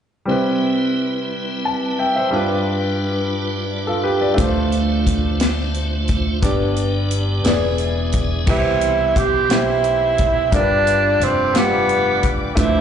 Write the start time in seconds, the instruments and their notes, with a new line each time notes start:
0.26 grand piano C3 G3 C4 E4, tonewheel organ G3 C4 B4
0.30 tonewheel organ E4, grand piano B4
1.65 grand piano A5
1.99 grand piano E5 G5
2.16 grand piano C5 E5
2.31 grand piano G2 G3 D4 F4, tonewheel organ G3 D4 F4 B4
2.36 grand piano B4
3.69 tonewheel organ D5
3.86 grand piano F4 A4, tonewheel organ F5
4.03 grand piano G4 B4, tonewheel organ A5
4.21 grand piano B4 D5
4.34 fingered electric bass D2, grand piano D3 A3 D4 F4, tonewheel organ A3 C5, kick, closed hi-hat
4.38 tonewheel organ D4 F4, grand piano C5
4.72 closed hi-hat
5.07 kick, closed hi-hat
5.40 snare, closed hi-hat
5.74 closed hi-hat
6.08 kick, closed hi-hat
6.42 fingered electric bass G1, grand piano G2 B3 D4 G4 D5, tonewheel organ A#3 D4 G4 D5, kick, closed hi-hat
6.49 tonewheel organ B3
6.76 closed hi-hat
7.11 closed hi-hat
7.43 fingered electric bass E1, grand piano E3 B3 E4 G#4 D5, tonewheel organ B3 E4 G#4 D5, snare, closed hi-hat
7.78 tonewheel organ G#5, closed hi-hat
8.12 tonewheel organ E5, kick, closed hi-hat
8.46 fingered electric bass C2, grand piano B2 E3 E4 G4 B4, tenor saxophone E4, string section E5 G5 B5 C6, kick, crash
8.56 grand piano C5
8.81 closed hi-hat
9.15 fingered electric bass B1, tenor saxophone G4, kick, closed hi-hat
9.49 grand piano B2 E4 G4 C5, tenor saxophone E4, snare, closed hi-hat
9.84 closed hi-hat
10.18 kick, closed hi-hat
10.52 fingered electric bass G1, grand piano G2 G3 D4 F4 A#4, tenor saxophone D4, string section D5 D6, kick, closed hi-hat
10.61 grand piano B4
10.87 closed hi-hat
11.20 fingered electric bass F1, tenor saxophone C4, closed hi-hat
11.53 grand piano G3 D4 F4 G4, tenor saxophone B3, snare, closed hi-hat
11.89 closed hi-hat
12.23 kick, closed hi-hat
12.55 fingered electric bass D2, grand piano D3 F3 A3 D4 B4, tenor saxophone E4, string section A5 C6, kick, closed hi-hat
12.65 grand piano C5